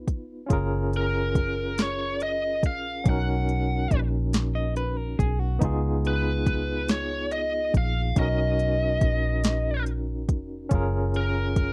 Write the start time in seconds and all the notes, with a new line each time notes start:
Already playing: B3 D#4 F4 B4
0.08 F1, kick, closed hi-hat
0.46 C#4 F4, kick, closed hi-hat
0.51 F#1 G#4 A#4
0.93 A#4, closed hi-hat
1.35 kick, closed hi-hat
1.78 snare, closed hi-hat
1.82 C#5
2.20 D#5, closed hi-hat
2.63 A#1 F5, kick, closed hi-hat
3.04 B1 C#4 D#4 F#4, kick, closed hi-hat
3.09 A#4 F#5
3.49 closed hi-hat
3.91 A#1, kick, closed hi-hat
4.33 snare, closed hi-hat
4.55 D#5
4.76 B4, closed hi-hat
4.97 A#4
5.19 B1 G#4, kick, closed hi-hat
5.39 F#4
5.59 C#2 B3 D#4 F4, kick, closed hi-hat
5.65 G#4
6.05 B4, closed hi-hat
6.46 kick, closed hi-hat
6.88 C#5, snare, closed hi-hat
7.31 D#5, closed hi-hat
7.74 A#1 F5, kick, closed hi-hat
8.16 B1 C#4 D#4 F#4 D#5, kick, closed hi-hat
8.21 A#4
8.59 closed hi-hat
9.01 A#1, kick, closed hi-hat
9.44 snare, closed hi-hat
9.86 closed hi-hat
10.29 F1, kick, closed hi-hat
10.69 F#1 C#4 F4, kick, closed hi-hat
10.73 G#4 A#4
11.14 A#4, closed hi-hat
11.56 kick, closed hi-hat